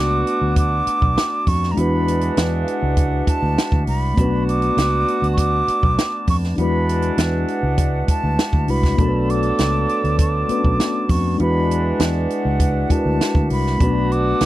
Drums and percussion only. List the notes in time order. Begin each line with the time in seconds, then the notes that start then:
0.27 closed hi-hat
0.56 kick, closed hi-hat
0.87 closed hi-hat
1.02 kick
1.18 snare, closed hi-hat
1.47 kick, open hi-hat
1.63 snare
1.77 closed hi-hat
2.08 closed hi-hat
2.21 closed hi-hat
2.37 snare, closed hi-hat
2.68 closed hi-hat
2.97 kick, closed hi-hat
3.27 kick, closed hi-hat
3.58 snare, closed hi-hat
3.72 kick
3.87 open hi-hat
4.17 kick, closed hi-hat
4.49 closed hi-hat
4.62 closed hi-hat
4.78 snare, closed hi-hat
5.08 closed hi-hat
5.24 closed hi-hat
5.38 kick, closed hi-hat
5.68 closed hi-hat
5.83 kick
5.99 snare, closed hi-hat
6.27 kick, open hi-hat
6.44 snare
6.58 closed hi-hat
6.89 closed hi-hat
7.02 closed hi-hat
7.18 snare, closed hi-hat
7.48 closed hi-hat
7.78 kick, closed hi-hat
8.08 kick, closed hi-hat
8.39 snare, closed hi-hat
8.53 kick
8.68 open hi-hat
8.83 kick, snare
8.98 kick, closed hi-hat
9.30 closed hi-hat
9.43 closed hi-hat
9.58 snare, closed hi-hat
9.89 closed hi-hat
10.04 closed hi-hat
10.19 kick, closed hi-hat
10.49 closed hi-hat
10.64 kick
10.80 snare, closed hi-hat
11.09 kick, open hi-hat
11.39 closed hi-hat
11.71 closed hi-hat
12.00 snare, closed hi-hat
12.30 closed hi-hat
12.60 kick, closed hi-hat
12.90 kick, closed hi-hat
13.21 snare, closed hi-hat
13.35 kick
13.50 open hi-hat
13.66 snare
13.80 kick, closed hi-hat
14.12 closed hi-hat
14.41 snare, closed hi-hat